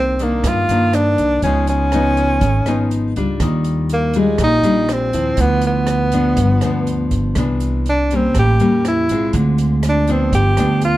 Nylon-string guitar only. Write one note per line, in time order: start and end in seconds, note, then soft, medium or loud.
0.00 0.41 C3 medium
0.00 0.15 D#3 soft
0.00 0.16 A#3 medium
0.00 0.16 D4 medium
0.20 0.65 D#3 medium
0.20 0.65 A#3 medium
0.20 0.66 D4 medium
0.45 1.41 G2 soft
0.70 1.40 D#3 medium
0.70 1.40 A#3 medium
0.70 1.40 D4 medium
1.44 2.40 C#3 medium
1.44 1.89 F3 medium
1.44 1.89 B3 medium
1.44 1.89 D#4 medium
1.93 2.42 F3 medium
1.93 2.42 B3 medium
1.93 2.42 D#4 medium
2.42 3.38 G#2 medium
2.67 3.12 F3 medium
2.67 3.12 B3 medium
2.67 3.12 D#4 medium
3.17 4.11 G3 medium
3.17 4.12 D4 medium
3.17 4.12 F4 medium
3.42 4.38 D#3 medium
4.15 4.61 G3 medium
4.15 4.61 D4 medium
4.15 4.61 F4 medium
4.39 5.36 A#2 medium
4.64 5.10 G3 medium
4.64 5.10 D4 medium
4.64 5.10 F4 medium
5.14 6.09 F3 medium
5.14 6.09 E4 medium
5.38 6.35 D3 medium
6.13 6.59 F3 medium
6.13 6.59 B3 medium
6.13 6.59 D4 medium
6.39 7.35 G2 medium
6.64 7.33 F3 medium
6.64 7.34 B3 medium
6.64 7.34 D4 medium
7.37 8.33 C3 medium
7.37 7.86 E3 medium
7.37 7.86 B3 medium
7.37 7.87 D4 medium
8.12 8.57 G3 medium
8.12 8.57 A#3 medium
8.12 8.57 C#4 medium
8.37 9.33 A2 soft
8.60 9.06 G3 medium
8.60 9.06 A#3 medium
8.60 9.06 C#4 medium
9.11 10.05 G#3 medium
9.11 10.05 C4 medium
9.11 10.06 F4 medium
9.33 10.30 D3 medium
10.08 10.54 F3 medium
10.08 10.54 B3 medium
10.08 10.54 D4 medium
10.34 10.97 G2 soft
10.57 10.97 F3 medium
10.57 10.97 B3 medium
10.57 10.97 D4 medium